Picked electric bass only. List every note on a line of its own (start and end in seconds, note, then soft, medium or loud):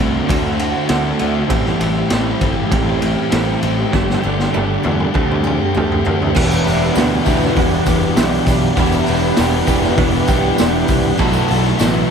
0.00 0.20 C2 loud
0.30 0.72 D2 medium
0.90 1.11 D2 medium
1.22 1.42 D2 medium
1.50 1.72 A1 medium
1.81 2.02 A1 medium
2.12 2.33 A1 medium
2.42 2.63 G1 medium
2.72 3.15 A1 medium
3.33 3.54 A1 medium
3.63 3.84 A1 medium
3.94 4.15 G1 medium
4.25 4.46 G1 medium
4.56 4.77 G1 medium
4.86 5.07 E2 medium
5.16 5.58 D2 medium
5.77 5.98 D2 medium
6.07 6.28 D2 medium
6.37 6.59 E1 medium
6.67 6.89 E1 medium
6.97 7.18 D2 medium
7.27 7.49 D2 loud
7.57 7.79 E1 medium
7.87 8.09 E1 medium
8.18 8.40 B1 medium
8.47 8.69 B1 medium
8.78 9.00 E1 medium
9.08 9.30 E1 medium
9.39 9.61 E1 medium
9.68 9.90 E1 medium
9.99 10.21 E1 medium
10.29 10.51 B1 medium
10.61 10.82 E1 medium
10.90 11.12 C2 medium
11.19 11.41 B1 loud
11.51 11.72 B1 medium
11.80 12.02 A1 medium